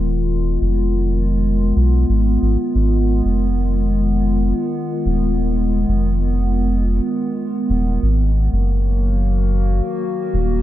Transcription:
Already playing: D#1 D#3 G#3 B3 F4 A#4
0.61 F1
1.76 B1
2.09 G#1
2.42 G#1
2.75 G#1
3.25 F1
5.05 D#1
5.88 F1
7.69 D#1
8.02 G#1 D#3
8.18 A#3
8.30 F#3
8.53 F#1
8.72 A#4
8.94 F#4
10.33 D#1

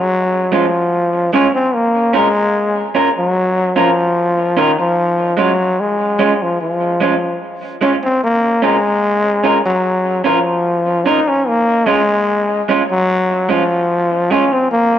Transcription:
Already playing: F#3
0.52 F3 G#3 C#4 F4
1.33 G#3 C#4 F4
1.55 C4, muted clean electric guitar stroke
1.75 A#3
2.13 G#3 C#4 F4 A#4
2.95 C#4 F4 A#4
3.18 F#3
3.76 F3 C#4 F4 A#4
4.57 D#3 C#4 F4 A#4
4.79 F3, muted clean electric guitar stroke
5.37 F#3 G#3 C#4 F4
5.80 G#3
6.19 G#3 C#4 F4
6.43 F3
6.61 F3
7.01 G#3 C#4 F4
7.81 G#3 C#4 F4
8.03 C4, muted clean electric guitar stroke
8.24 A#3
8.62 G#3 C#4 F4 A#4
9.44 C#4 F4 A#4
9.65 F#3
10.24 F3 C#4 F4 A#4
11.06 C#4 D#4 F4 A#4
11.28 C#4, muted clean electric guitar stroke
11.47 A#3
11.86 G#3 C#4 F4
12.69 G#3 C#4 F4
12.91 F#3
13.49 F3 G#3 C#4 F4
14.31 G#3 C#4 F4
14.52 C4, muted clean electric guitar stroke
14.72 A#3

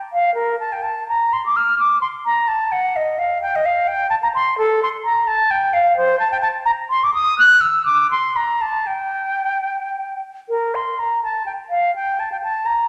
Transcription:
0.13 F5
0.35 A#4
0.60 A5
0.73 G5
0.83 A5
1.08 A#5
1.33 C6
1.46 D6
1.56 F6
1.79 D6
2.01 C6
2.26 A#5
2.48 A5
2.72 F#5
2.96 D#5
3.19 F5
3.42 G5
3.56 D#5
3.65 F5
3.88 G5
4.10 A5
4.23 A#5
4.35 C6
4.58 A4
4.83 C6
5.04 A#5
5.27 A5
5.51 G5
5.73 F5
5.97 C5
6.20 A5
6.32 G5
6.42 A5
6.65 A#5
6.90 C6
7.04 D6
7.14 D#6
7.39 F#6
7.61 E6
7.86 D6
8.11 C6
8.36 A#5
8.61 A5
8.87 G5
10.49 A#4
10.75 C6
10.99 A#5
11.24 A5
11.46 G5
11.70 F5
11.96 G5
12.20 A5
12.32 G5
12.43 A5
12.66 A#5

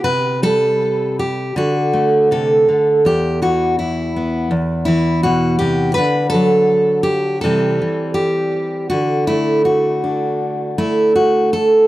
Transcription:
0.04 C3 B4
0.43 G3 A4
1.19 G4
1.56 D3 F#4
1.93 A3
2.31 C3 A4
2.69 D3
3.05 E2 G4
3.42 E3 F#4
3.79 E4
4.16 B3
4.51 E2
4.85 E3 E4
5.23 B2 F#4
5.59 C3 G4
5.94 D3 B4
6.30 A4
6.34 F#3
7.03 G4
7.41 C3 E3 G3 A4
7.46 C4
7.82 E3
8.14 G4
8.90 D3 F#4
9.27 A3 E4
9.65 F#4
10.04 D4
10.78 A3 E4
11.15 F#4
11.53 A4

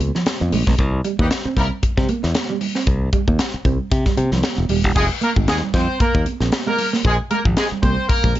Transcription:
Already playing: C#2
0.00 muted clean electric guitar stroke, closed hi-hat, muted conga, high conga
0.15 F3, snare
0.26 muted clean electric guitar stroke, snare, closed hi-hat, muted conga, high conga
0.40 F2, high conga
0.52 A#1 G#3, open hi-hat, muted conga, high conga, low conga
0.67 B1 G#3, kick, snare
0.78 C2, kick, closed hi-hat, muted conga
0.93 muted clean electric guitar stroke
1.04 G3, closed hi-hat, muted conga
1.19 D#2 E3 G3 A#3 D#4 G4, kick
1.30 muted clean electric guitar stroke, snare, closed hi-hat, muted conga
1.45 C4, muted fingered electric bass stroke
1.57 C2 G3 A#3 C4 E4 A#4, kick, snare, closed hi-hat, muted conga, low conga
1.82 muted fingered electric bass stroke, muted clean electric guitar stroke, kick, closed hi-hat, muted conga
1.97 C3 G3, kick, snare
2.09 A#3, closed hi-hat, muted conga, high conga
2.23 E2, snare
2.34 snare, closed hi-hat, muted conga, high conga
2.49 G3, high conga
2.61 muted clean electric guitar stroke, open hi-hat, muted conga, high conga, low conga
2.75 C4, snare
2.86 C2, kick, closed hi-hat, muted conga
3.02 muted clean electric guitar stroke
3.13 G3, kick, closed hi-hat, muted conga
3.28 D#2 A#3, kick
3.38 snare, closed hi-hat, muted conga
3.54 muted fingered electric bass stroke
3.65 C2 C4, kick, closed hi-hat, muted conga, low conga
3.91 C3, kick, closed hi-hat, muted conga
4.05 G3, kick, snare
4.17 C3, muted clean electric guitar stroke, closed hi-hat, muted conga, high conga
4.31 C2 F3, snare
4.42 muted clean electric guitar stroke, snare, closed hi-hat, muted conga, high conga
4.56 E1, high conga
4.69 D#1 G3, open hi-hat, high conga, low conga
4.84 E1 G3, kick, snare
4.95 F1 G#3 G#4, kick, crash, muted conga
5.11 muted clean electric guitar stroke
5.21 A#3 A#4, closed hi-hat, muted conga
5.36 G#1 G#3, kick
5.47 D#2 G#3 G#4, snare, closed hi-hat, muted conga
5.63 low conga
5.74 F2 C4 C5, kick, snare, closed hi-hat, low conga
6.00 A#3 A#4, muted fingered electric bass stroke, kick, closed hi-hat, muted conga
6.15 D#2, muted clean electric guitar stroke, kick
6.26 closed hi-hat, muted conga, high conga
6.40 A#1 C4, snare
6.52 snare, closed hi-hat, muted conga, high conga
6.67 G#3 A#3 A#4, high conga
6.78 muted clean electric guitar stroke, open hi-hat, muted conga, low conga
6.93 A#3, snare
7.05 A#1 G#3 G#4, kick, closed hi-hat
7.19 muted clean electric guitar stroke
7.31 G#3 A#3 A#4, closed hi-hat, muted conga
7.45 G#1 F3, kick
7.56 G#3 G#4, snare, closed hi-hat, muted conga
7.72 muted fingered electric bass stroke, low conga
7.82 C2 A#3 C4 C5, kick, closed hi-hat, low conga
8.08 A#3 A#4, kick, closed hi-hat, muted conga
8.23 A#1 G#3, kick
8.35 muted clean electric guitar stroke, closed hi-hat, high conga

